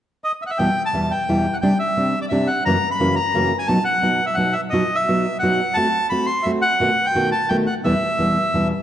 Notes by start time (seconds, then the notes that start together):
0.24 D#5
0.42 E5
0.47 E5 F#5
0.58 E2 B2 E3 G3 B3 E4 G5
0.86 A5
0.93 E2 B2 E3 G3 B3 E4
1.11 G5
1.29 E2 B2 E3 G3 B3 E4
1.53 F#5
1.61 C3 G3 C4 D4 G4 G5
1.79 E5
1.97 C3 G3 C4 D4 G4
2.22 D5
2.29 C3 G3 C4 D4 G4 E5
2.47 F#5
2.65 F#2 C#3 E3 A#3 C#4 F#4 A#5
2.91 B5
3.00 F#2 C#3 E3 A#3 C#4 F#4
3.16 A#5
3.34 F#2 C#3 E3 A#3 C#4 F#4
3.59 G#5
3.67 B2 F#3 B3 D#4 F#4 A5
3.84 F#5
4.02 B2 F#3 B3 D#4 F#4
4.26 E5
4.34 B2 F#3 B3 D#4 F#4 F#5
4.53 E5
4.70 B2 F#3 B3 D#4 F#4 D#5
4.95 E5
5.08 B2 F#3 B3 D#4 F#4
5.39 B2 F#3 B3 F#4 F#5
5.43 D#4
5.74 A3 C4 F#4 A5
6.10 A3 C4 F#4 B5
6.26 C6
6.43 A3 C4 F#4 E5
6.62 F#5
6.80 B2 D#3 A3 B3 F#4
7.06 G5
7.15 B2 D#3 A3 B3 F#4
7.32 A5
7.49 B2 D#3 A3 B3 F#4 G5
7.66 F#5
7.84 E2 B2 E3 G3 B3 E4 E5
8.19 E2 B2 E3 G3 B3 E4
8.54 E2 B2 E3 G3 B3 E4